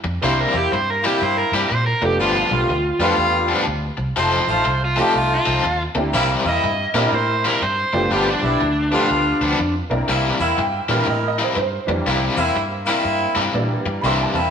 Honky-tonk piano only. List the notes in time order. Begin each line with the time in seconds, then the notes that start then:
0.22 A#3 C4 D4 E4 G4
2.01 A3 B3 D4 F4 A4
2.99 A3 B3 D4 F4 G4
4.97 A3 C4 D#4 F4 G4
5.95 A#3 C4 D4 E4 G4
6.94 A#3 C4 D4 E4 G4
7.93 A3 B3 D4 F4 G4
8.91 A3 B3 D4 F4 G4
9.90 A#3 C4 D4 E4 A#4
10.56 F#5
10.60 G5
10.88 E3 G3 A#3 D4
11.10 D#5
11.28 D#5
11.43 C5
11.55 B4
11.60 C5
11.87 E3 G3 A#3 D4
13.54 E3 G3 A#3 D4
14.01 E3 G3 A#3 D4 B5
14.06 C6
14.23 A5
14.40 G5